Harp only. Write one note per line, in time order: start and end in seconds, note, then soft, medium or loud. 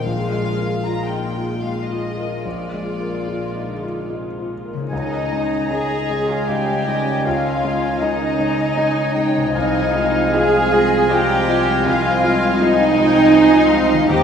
0.00 3.78 A#2 soft
0.00 3.82 G#3 soft
0.00 3.87 F4 soft
0.00 3.92 A#4 soft
4.73 8.63 C#3 soft
4.78 8.68 G#3 soft
4.82 8.72 D#4 soft
4.87 8.77 D#5 soft
9.37 13.27 C3 medium
9.41 13.31 G#3 soft
9.46 13.36 F4 soft
9.50 13.40 F5 soft
13.93 14.23 D#3 medium
13.97 14.23 A#3 medium
14.02 14.23 D#4 medium
14.06 14.23 C5 medium